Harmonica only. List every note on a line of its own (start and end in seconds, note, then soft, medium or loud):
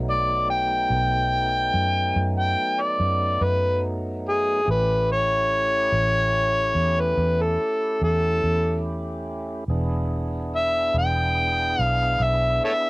0.10 0.49 D5 medium
0.50 2.34 G5 medium
2.40 2.82 G5 medium
2.81 3.45 D5 medium
3.43 3.83 B4 medium
4.28 4.67 G#4 medium
4.70 5.09 B4 medium
5.12 7.01 C#5 medium
7.00 7.43 B4 medium
7.42 8.01 A4 medium
8.04 8.84 A4 medium
10.56 10.95 E5 medium
10.98 11.81 G5 medium
11.81 12.25 F5 medium
12.23 12.63 E5 medium
12.64 12.73 A4 medium
12.64 12.71 C#5 medium
12.64 12.90 E5 medium